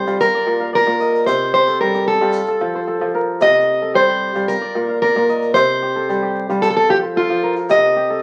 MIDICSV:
0, 0, Header, 1, 4, 480
1, 0, Start_track
1, 0, Tempo, 534759
1, 1144, Time_signature, 4, 2, 24, 8
1, 7383, End_track
2, 0, Start_track
2, 0, Title_t, "Steel-string acoustic guitar"
2, 0, Program_c, 0, 25
2, 0, Note_on_c, 0, 72, 75
2, 147, Note_off_c, 0, 72, 0
2, 186, Note_on_c, 0, 70, 86
2, 631, Note_off_c, 0, 70, 0
2, 676, Note_on_c, 0, 70, 85
2, 1131, Note_off_c, 0, 70, 0
2, 1135, Note_on_c, 0, 72, 86
2, 1370, Note_off_c, 0, 72, 0
2, 1381, Note_on_c, 0, 72, 84
2, 1605, Note_off_c, 0, 72, 0
2, 1622, Note_on_c, 0, 70, 75
2, 1861, Note_off_c, 0, 70, 0
2, 1864, Note_on_c, 0, 69, 83
2, 2788, Note_off_c, 0, 69, 0
2, 3072, Note_on_c, 0, 75, 97
2, 3546, Note_off_c, 0, 75, 0
2, 3549, Note_on_c, 0, 72, 87
2, 3994, Note_off_c, 0, 72, 0
2, 4023, Note_on_c, 0, 70, 96
2, 4470, Note_off_c, 0, 70, 0
2, 4506, Note_on_c, 0, 70, 87
2, 4952, Note_off_c, 0, 70, 0
2, 4974, Note_on_c, 0, 72, 97
2, 5904, Note_off_c, 0, 72, 0
2, 5943, Note_on_c, 0, 69, 91
2, 6002, Note_off_c, 0, 69, 0
2, 6017, Note_on_c, 0, 69, 72
2, 6063, Note_off_c, 0, 69, 0
2, 6073, Note_on_c, 0, 69, 87
2, 6180, Note_off_c, 0, 69, 0
2, 6195, Note_on_c, 0, 67, 79
2, 6258, Note_off_c, 0, 67, 0
2, 6437, Note_on_c, 0, 65, 77
2, 6770, Note_off_c, 0, 65, 0
2, 6919, Note_on_c, 0, 75, 93
2, 7360, Note_off_c, 0, 75, 0
2, 7383, End_track
3, 0, Start_track
3, 0, Title_t, "Kora"
3, 0, Program_c, 1, 46
3, 0, Note_on_c, 1, 48, 79
3, 0, Note_on_c, 1, 67, 61
3, 0, Note_on_c, 1, 69, 59
3, 63, Note_on_c, 1, 55, 67
3, 65, Note_on_c, 1, 65, 67
3, 228, Note_off_c, 1, 48, 0
3, 228, Note_off_c, 1, 55, 0
3, 310, Note_on_c, 1, 74, 72
3, 419, Note_on_c, 1, 46, 78
3, 473, Note_off_c, 1, 69, 0
3, 541, Note_on_c, 1, 77, 64
3, 651, Note_off_c, 1, 74, 0
3, 655, Note_on_c, 1, 74, 70
3, 768, Note_off_c, 1, 46, 0
3, 779, Note_on_c, 1, 46, 81
3, 898, Note_on_c, 1, 75, 69
3, 1099, Note_off_c, 1, 67, 0
3, 1137, Note_on_c, 1, 48, 79
3, 1188, Note_off_c, 1, 46, 0
3, 1378, Note_on_c, 1, 67, 65
3, 1424, Note_off_c, 1, 65, 0
3, 1438, Note_off_c, 1, 77, 0
3, 1504, Note_on_c, 1, 69, 65
3, 1624, Note_on_c, 1, 55, 72
3, 1649, Note_off_c, 1, 74, 0
3, 1741, Note_off_c, 1, 67, 0
3, 1745, Note_on_c, 1, 67, 65
3, 1858, Note_off_c, 1, 75, 0
3, 1975, Note_off_c, 1, 55, 0
3, 1985, Note_on_c, 1, 55, 70
3, 1988, Note_on_c, 1, 65, 61
3, 2148, Note_off_c, 1, 48, 0
3, 2148, Note_off_c, 1, 55, 0
3, 2224, Note_off_c, 1, 69, 0
3, 2228, Note_on_c, 1, 69, 73
3, 2342, Note_on_c, 1, 53, 81
3, 2469, Note_on_c, 1, 72, 63
3, 2577, Note_off_c, 1, 69, 0
3, 2581, Note_on_c, 1, 69, 69
3, 2693, Note_off_c, 1, 53, 0
3, 2704, Note_on_c, 1, 53, 78
3, 2822, Note_on_c, 1, 70, 64
3, 3012, Note_off_c, 1, 67, 0
3, 3059, Note_on_c, 1, 48, 79
3, 3108, Note_off_c, 1, 53, 0
3, 3346, Note_off_c, 1, 65, 0
3, 3423, Note_off_c, 1, 69, 0
3, 3427, Note_on_c, 1, 69, 60
3, 3481, Note_off_c, 1, 70, 0
3, 3535, Note_off_c, 1, 72, 0
3, 3539, Note_on_c, 1, 55, 76
3, 3667, Note_on_c, 1, 67, 62
3, 3894, Note_off_c, 1, 55, 0
3, 3904, Note_on_c, 1, 55, 72
3, 3906, Note_on_c, 1, 65, 59
3, 4069, Note_off_c, 1, 48, 0
3, 4069, Note_off_c, 1, 55, 0
3, 4142, Note_on_c, 1, 74, 69
3, 4265, Note_on_c, 1, 46, 77
3, 4319, Note_off_c, 1, 69, 0
3, 4388, Note_on_c, 1, 77, 61
3, 4502, Note_off_c, 1, 74, 0
3, 4505, Note_on_c, 1, 74, 74
3, 4620, Note_off_c, 1, 46, 0
3, 4631, Note_on_c, 1, 46, 80
3, 4750, Note_on_c, 1, 75, 64
3, 4934, Note_off_c, 1, 67, 0
3, 4985, Note_on_c, 1, 48, 83
3, 5030, Note_off_c, 1, 46, 0
3, 5226, Note_on_c, 1, 67, 60
3, 5265, Note_off_c, 1, 65, 0
3, 5284, Note_off_c, 1, 77, 0
3, 5346, Note_on_c, 1, 69, 62
3, 5467, Note_on_c, 1, 55, 73
3, 5500, Note_off_c, 1, 74, 0
3, 5584, Note_off_c, 1, 67, 0
3, 5587, Note_on_c, 1, 67, 63
3, 5711, Note_off_c, 1, 75, 0
3, 5819, Note_off_c, 1, 55, 0
3, 5829, Note_on_c, 1, 65, 60
3, 5830, Note_on_c, 1, 55, 74
3, 5991, Note_off_c, 1, 48, 0
3, 5991, Note_off_c, 1, 55, 0
3, 6067, Note_off_c, 1, 69, 0
3, 6071, Note_on_c, 1, 69, 73
3, 6187, Note_on_c, 1, 53, 71
3, 6309, Note_on_c, 1, 72, 65
3, 6424, Note_off_c, 1, 69, 0
3, 6428, Note_on_c, 1, 69, 69
3, 6541, Note_off_c, 1, 53, 0
3, 6552, Note_on_c, 1, 53, 77
3, 6668, Note_on_c, 1, 70, 67
3, 6855, Note_off_c, 1, 67, 0
3, 6907, Note_on_c, 1, 48, 86
3, 6951, Note_off_c, 1, 53, 0
3, 7147, Note_on_c, 1, 67, 61
3, 7188, Note_off_c, 1, 65, 0
3, 7268, Note_off_c, 1, 69, 0
3, 7271, Note_on_c, 1, 69, 69
3, 7325, Note_off_c, 1, 70, 0
3, 7375, Note_off_c, 1, 72, 0
3, 7383, Note_off_c, 1, 48, 0
3, 7383, Note_off_c, 1, 67, 0
3, 7383, Note_off_c, 1, 69, 0
3, 7383, End_track
4, 0, Start_track
4, 0, Title_t, "Drums"
4, 65, Note_on_c, 9, 82, 21
4, 155, Note_off_c, 9, 82, 0
4, 186, Note_on_c, 9, 82, 53
4, 276, Note_off_c, 9, 82, 0
4, 902, Note_on_c, 9, 82, 21
4, 991, Note_off_c, 9, 82, 0
4, 1035, Note_on_c, 9, 82, 20
4, 1125, Note_off_c, 9, 82, 0
4, 1141, Note_on_c, 9, 82, 65
4, 1231, Note_off_c, 9, 82, 0
4, 1382, Note_on_c, 9, 82, 21
4, 1472, Note_off_c, 9, 82, 0
4, 1500, Note_on_c, 9, 82, 20
4, 1590, Note_off_c, 9, 82, 0
4, 1744, Note_on_c, 9, 82, 22
4, 1833, Note_off_c, 9, 82, 0
4, 1858, Note_on_c, 9, 82, 18
4, 1948, Note_off_c, 9, 82, 0
4, 2089, Note_on_c, 9, 82, 64
4, 2179, Note_off_c, 9, 82, 0
4, 2213, Note_on_c, 9, 82, 21
4, 2302, Note_off_c, 9, 82, 0
4, 3061, Note_on_c, 9, 82, 58
4, 3151, Note_off_c, 9, 82, 0
4, 3548, Note_on_c, 9, 82, 20
4, 3638, Note_off_c, 9, 82, 0
4, 3909, Note_on_c, 9, 82, 19
4, 3999, Note_off_c, 9, 82, 0
4, 4026, Note_on_c, 9, 82, 56
4, 4116, Note_off_c, 9, 82, 0
4, 4748, Note_on_c, 9, 82, 20
4, 4838, Note_off_c, 9, 82, 0
4, 4868, Note_on_c, 9, 82, 19
4, 4958, Note_off_c, 9, 82, 0
4, 4986, Note_on_c, 9, 82, 63
4, 5076, Note_off_c, 9, 82, 0
4, 5474, Note_on_c, 9, 82, 19
4, 5563, Note_off_c, 9, 82, 0
4, 5835, Note_on_c, 9, 82, 19
4, 5925, Note_off_c, 9, 82, 0
4, 5946, Note_on_c, 9, 82, 55
4, 6036, Note_off_c, 9, 82, 0
4, 6787, Note_on_c, 9, 82, 17
4, 6877, Note_off_c, 9, 82, 0
4, 6907, Note_on_c, 9, 82, 55
4, 6997, Note_off_c, 9, 82, 0
4, 7383, End_track
0, 0, End_of_file